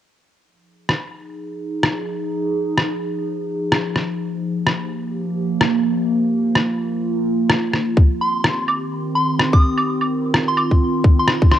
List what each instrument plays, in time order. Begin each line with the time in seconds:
0.40 ambient pad F3 D#4 G#4
0.89 cross-stick
1.83 cross-stick
2.78 cross-stick
3.72 cross-stick
3.96 cross-stick
4.19 ambient pad A#3 G4
4.67 cross-stick
5.61 cross-stick
6.08 ambient pad F4
6.56 cross-stick
7.50 cross-stick
7.74 cross-stick
7.97 ambient pad D#3 C4 G4, kick
8.21 synth bell C6
8.44 cross-stick
8.68 claves
9.15 synth bell C6
9.39 cross-stick
9.53 synth bell D#6, kick
9.77 claves
9.86 ambient pad F4
10.01 claves
10.34 cross-stick
10.48 synth bell C6
10.57 claves
10.71 kick
11.04 kick
11.19 synth bell C6
11.28 cross-stick
11.42 kick
11.52 synth bell C6, cross-stick